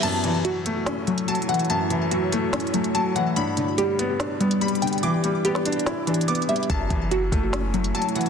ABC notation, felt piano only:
X:1
M:4/4
L:1/8
Q:1/4=144
K:F#phr
V:1 name="Felt piano" clef=bass
F,, E, F, A, C A, F, E, | F,, E, F, A, C A, F, E, | G,, D, G, B, D B, G, D, | E, G, B, D E D B, G, |
F,, E, F, A, C A, F, E, |]